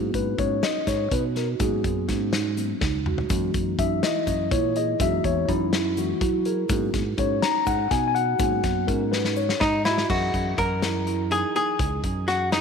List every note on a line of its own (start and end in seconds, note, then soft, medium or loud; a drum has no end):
0.00 0.11 G#2 loud
0.00 0.59 F#3 medium
0.00 0.59 A#3 soft
0.00 0.59 B3 soft
0.00 0.60 C#4 medium
0.00 0.33 F#4 medium
0.14 0.35 G#2 medium
0.14 0.40 B4 medium
0.14 kick medium
0.14 closed hi-hat medium
0.14 shaker soft
0.38 0.60 G#2 medium
0.38 0.60 C#4 medium
0.38 0.64 C#5 medium
0.38 kick medium
0.38 closed hi-hat medium
0.63 1.05 D#4 medium
0.63 0.86 D#5 medium
0.63 snare medium
0.63 closed hi-hat medium
0.87 1.08 G#2 medium
0.87 1.12 C#5 medium
0.87 kick medium
0.87 snare soft
0.87 closed hi-hat medium
0.87 shaker medium
1.11 1.54 B2 medium
1.11 1.33 D#4 medium
1.11 1.23 B4 medium
1.11 kick loud
1.11 closed hi-hat medium
1.36 1.57 F#4 medium
1.36 1.48 A#4 medium
1.36 snare soft
1.36 closed hi-hat soft
1.60 1.81 G#2 medium
1.60 2.29 F#3 soft
1.60 2.29 A#3 soft
1.60 2.30 B3 soft
1.60 2.30 C#4 medium
1.60 2.03 F#4 medium
1.60 2.06 G#4 medium
1.60 kick loud
1.60 closed hi-hat medium
1.60 shaker soft
1.84 2.06 F#2 medium
1.84 kick medium
1.84 closed hi-hat medium
2.08 2.72 G#2 loud
2.08 2.30 C#4 medium
2.08 kick medium
2.08 snare soft
2.08 closed hi-hat medium
2.33 2.75 D#4 medium
2.33 snare medium
2.33 closed hi-hat medium
2.57 2.79 F#3 soft
2.57 2.79 A#3 soft
2.57 2.79 B3 soft
2.57 2.80 C#4 soft
2.57 closed hi-hat medium
2.57 shaker soft
2.81 3.24 C#2 medium
2.81 3.03 D#4 medium
2.81 kick loud
2.81 snare medium
3.06 3.27 F#4 medium
3.06 mid tom medium
3.18 floor tom medium
3.30 3.51 F#2 loud
3.30 4.96 E3 medium
3.30 4.96 G#3 soft
3.30 4.97 A#3 soft
3.30 4.97 D#4 medium
3.30 3.73 F#4 medium
3.30 kick loud
3.30 closed hi-hat medium
3.30 shaker medium
3.54 3.75 F#2 medium
3.54 kick medium
3.54 closed hi-hat medium
3.54 shaker soft
3.78 4.00 F#2 medium
3.78 4.00 D#4 medium
3.78 4.04 E5 medium
3.78 kick medium
3.78 closed hi-hat medium
4.03 4.45 E4 medium
4.03 4.49 D#5 loud
4.03 snare medium
4.03 closed hi-hat medium
4.27 4.48 F#2 medium
4.27 kick medium
4.27 closed hi-hat medium
4.27 shaker medium
4.51 4.94 A#2 medium
4.51 4.73 E4 medium
4.51 4.76 C#5 medium
4.51 kick loud
4.51 closed hi-hat medium
4.76 4.97 G#4 medium
4.76 5.01 D#5 medium
4.76 closed hi-hat medium
5.00 5.21 F#2 medium
5.00 5.70 E3 medium
5.00 5.70 G#3 soft
5.00 5.70 A#3 soft
5.00 5.70 D#4 medium
5.00 5.42 F#4 medium
5.00 5.23 E5 loud
5.00 kick loud
5.00 closed hi-hat medium
5.00 shaker medium
5.24 5.45 E2 medium
5.24 5.50 C#5 medium
5.24 kick medium
5.24 closed hi-hat medium
5.24 shaker soft
5.48 6.12 F#2 loud
5.48 5.70 D#4 medium
5.48 5.99 E4 medium
5.48 kick medium
5.48 closed hi-hat medium
5.73 6.15 E4 medium
5.73 snare loud
5.73 closed hi-hat medium
5.97 6.19 E3 soft
5.97 6.19 G#3 soft
5.97 6.19 A#3 soft
5.97 6.20 D#4 soft
5.97 6.48 F#4 medium
5.97 closed hi-hat medium
5.97 shaker medium
6.21 6.63 F#3 medium
6.21 6.43 E4 medium
6.21 kick loud
6.21 closed hi-hat medium
6.45 6.67 G#4 medium
6.45 6.91 A#4 medium
6.45 closed hi-hat medium
6.69 6.91 G#2 loud
6.69 7.02 F#3 medium
6.69 7.02 A#3 soft
6.69 7.02 B3 soft
6.69 7.03 C#4 medium
6.69 7.13 F#4 medium
6.69 kick loud
6.69 closed hi-hat medium
6.69 shaker medium
6.93 7.15 G#2 medium
6.93 kick medium
6.93 snare soft
6.93 closed hi-hat medium
6.93 shaker soft
7.18 7.39 G#2 medium
7.18 7.40 C#4 medium
7.18 7.44 C#5 medium
7.18 kick medium
7.18 closed hi-hat medium
7.42 7.85 D#4 medium
7.42 7.65 A#5 loud
7.42 snare loud
7.42 closed hi-hat medium
7.67 7.88 G#2 loud
7.67 7.92 F#5 medium
7.67 kick medium
7.67 closed hi-hat medium
7.67 shaker medium
7.91 8.33 B2 medium
7.91 8.12 D#4 medium
7.91 8.06 G#5 medium
7.91 kick loud
7.91 snare soft
7.91 closed hi-hat medium
8.08 8.15 G#5 medium
8.15 8.37 F#4 medium
8.15 8.90 F#5 loud
8.15 closed hi-hat medium
8.38 8.61 G#2 loud
8.38 9.08 F#3 medium
8.38 9.09 A#3 medium
8.38 9.09 B3 medium
8.38 9.09 C#4 medium
8.38 8.82 F#4 medium
8.38 kick loud
8.38 closed hi-hat medium
8.38 shaker medium
8.64 8.85 F#2 medium
8.64 kick medium
8.64 snare soft
8.64 closed hi-hat medium
8.64 shaker soft
8.87 9.52 G#2 loud
8.87 9.10 C#4 medium
8.87 9.10 A#4 medium
8.87 kick medium
8.87 closed hi-hat medium
9.12 9.55 D#4 medium
9.12 9.37 B4 medium
9.12 snare medium
9.25 snare medium
9.36 9.59 C#5 medium
9.36 shaker medium
9.49 snare medium
9.61 10.03 G#2 medium
9.61 9.83 D#4 medium
9.61 9.82 D#4 medium
9.61 kick loud
9.61 snare medium
9.85 10.10 E4 medium
9.85 10.07 F#4 medium
9.85 snare medium
9.85 shaker soft
9.98 snare medium
10.09 10.31 F#2 medium
10.09 12.61 E3 medium
10.09 12.61 F#3 medium
10.09 10.60 F#4 medium
10.09 10.52 G#4 medium
10.09 12.61 G#4 soft
10.09 12.61 A#4 soft
10.09 12.61 D#5 medium
10.09 kick loud
10.09 crash medium
10.34 10.55 F#2 medium
10.34 kick medium
10.34 closed hi-hat medium
10.58 11.42 F#2 medium
10.58 11.31 A#4 medium
10.58 kick medium
10.58 closed hi-hat medium
10.82 11.03 E4 medium
10.82 snare medium
10.82 closed hi-hat medium
11.07 11.28 E4 medium
11.07 closed hi-hat medium
11.31 11.52 D#4 medium
11.31 11.54 G#4 medium
11.31 closed hi-hat medium
11.55 11.76 D#4 medium
11.55 12.01 G#4 medium
11.55 closed hi-hat medium
11.79 12.01 C#2 medium
11.79 12.22 G#4 medium
11.79 kick loud
11.79 closed hi-hat medium
12.04 12.61 F#2 medium
12.04 kick medium
12.04 closed hi-hat medium
12.28 12.52 F#4 medium
12.28 snare soft
12.28 closed hi-hat medium
12.52 12.61 D#4 medium
12.52 12.61 E4 medium
12.52 snare medium
12.52 closed hi-hat medium